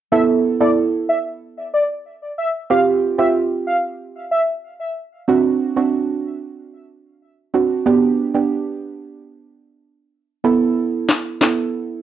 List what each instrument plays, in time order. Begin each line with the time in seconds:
0.12 synth pluck B3 E4 A4, soft synth lead E5
0.60 synth pluck B3 E4 A4, soft synth lead D5
1.09 soft synth lead E5
1.74 soft synth lead D5
2.38 soft synth lead E5
2.70 synth pluck C4 F4 G4, soft synth lead F5
3.18 synth pluck C4 F4 G4, soft synth lead E5
3.67 soft synth lead F5
4.31 soft synth lead E5
5.28 synth pluck C4 D4 F#4
5.76 synth pluck C4 D4 F#4
7.54 synth pluck C4 D4 F#4
7.86 synth pluck B3 D4 G4
8.34 synth pluck B3 D4 G4
10.44 synth pluck B3 E4 A4
11.09 snare, clap
11.41 synth pluck B3 E4 A4, snare, clap